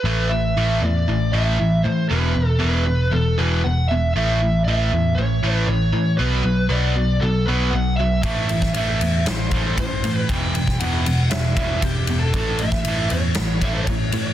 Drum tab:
RD |----------------|----------------|----------------|----------------|
SD |----------------|----------------|----------------|----------------|
BD |----------------|----------------|----------------|----------------|

RD |x-x-x-x-x-x-x-x-|x-x-x-x-x-x-x-x-|x-x-x-x-x-x-x-x-|
SD |---o----o-------|---o----o-------|---o----o-------|
BD |o--o------o-o---|o--o------o-o---|o--o------o-o---|